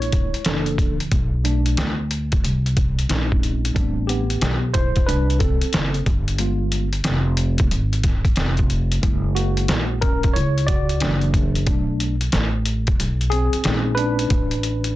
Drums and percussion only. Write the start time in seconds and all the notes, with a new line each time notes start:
0.02 closed hi-hat
0.12 kick, closed hi-hat
0.34 closed hi-hat
0.45 snare, closed hi-hat
0.66 closed hi-hat
0.78 kick, closed hi-hat
1.00 closed hi-hat
1.12 kick, closed hi-hat
1.45 closed hi-hat
1.66 closed hi-hat
1.77 snare, closed hi-hat
2.11 closed hi-hat
2.32 kick, closed hi-hat
2.44 closed hi-hat
2.66 closed hi-hat
2.77 kick, closed hi-hat
2.99 closed hi-hat
3.09 snare, closed hi-hat
3.32 kick
3.43 closed hi-hat
3.65 closed hi-hat
3.76 kick, closed hi-hat
4.09 closed hi-hat
4.30 closed hi-hat
4.41 snare, closed hi-hat
4.74 kick, closed hi-hat
4.96 kick, closed hi-hat
5.09 closed hi-hat
5.30 closed hi-hat
5.40 kick, closed hi-hat
5.61 closed hi-hat
5.73 snare, closed hi-hat
5.94 closed hi-hat
6.06 kick, closed hi-hat
6.28 closed hi-hat
6.38 closed hi-hat
6.72 closed hi-hat
6.93 closed hi-hat
7.04 snare, closed hi-hat
7.37 closed hi-hat
7.58 kick, closed hi-hat
7.71 closed hi-hat
7.93 closed hi-hat
8.03 kick, snare, closed hi-hat
8.25 kick, closed hi-hat
8.36 snare, closed hi-hat
8.57 kick, closed hi-hat
8.70 closed hi-hat
8.92 closed hi-hat
9.03 kick, closed hi-hat
9.36 closed hi-hat
9.57 closed hi-hat
9.68 snare, closed hi-hat
10.02 kick, closed hi-hat
10.23 kick, closed hi-hat
10.36 closed hi-hat
10.58 closed hi-hat
10.68 kick, closed hi-hat
10.89 closed hi-hat
11.00 snare, closed hi-hat
11.21 closed hi-hat
11.34 kick, closed hi-hat
11.55 closed hi-hat
11.67 kick, closed hi-hat
12.00 closed hi-hat
12.21 closed hi-hat
12.32 snare, closed hi-hat
12.66 closed hi-hat
12.87 kick, closed hi-hat
13.00 closed hi-hat
13.21 closed hi-hat
13.32 closed hi-hat
13.53 closed hi-hat
13.64 snare, closed hi-hat
13.97 closed hi-hat
14.19 closed hi-hat
14.30 kick, closed hi-hat
14.51 closed hi-hat
14.63 closed hi-hat
14.84 closed hi-hat